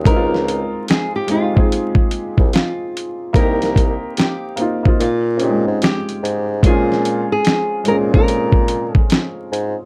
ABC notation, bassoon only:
X:1
M:4/4
L:1/16
Q:"Swing 16ths" 1/4=73
K:Bbdor
V:1 name="Bassoon" clef=bass
D,,3 z8 C,, z4 | C,,3 z4 z B,,3 A,, z2 A,,2 | B,,3 z3 B,,6 z2 A,, z |]